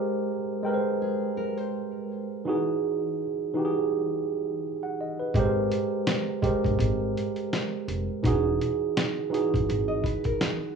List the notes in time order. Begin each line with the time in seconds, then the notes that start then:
Already playing: G#3 G4 A#4 C5
0.63 G#3 A#4 G5
0.67 B4
0.74 C5
1.02 G#4
1.37 A#4
1.57 C5
2.45 E3 D#4 F#4 G#4
3.54 E3 D#4 F#4
3.58 G4
3.65 G#4
4.83 F#5
5.01 D#5
5.20 B4
5.34 G#1 G#3 G4 A#4, kick, closed hi-hat
5.39 C5
5.72 closed hi-hat
6.07 snare, closed hi-hat
6.42 G#3 G4 A#4, kick, closed hi-hat
6.46 C5
6.64 G1, kick, closed hi-hat
6.79 G#1, kick, closed hi-hat
7.17 closed hi-hat
7.36 closed hi-hat
7.53 snare, closed hi-hat
7.88 F1, closed hi-hat
8.23 E1 E3 D#4 F#4, kick, closed hi-hat
8.28 G#4
8.61 closed hi-hat
8.97 snare, closed hi-hat
9.30 E3 D#4 F#4
9.34 G#4, closed hi-hat
9.54 F#1, kick, closed hi-hat
9.69 G#1, closed hi-hat
9.88 D#5
10.04 B4, kick, closed hi-hat
10.24 A#4, kick, closed hi-hat
10.41 G#4, snare, closed hi-hat
10.63 F#4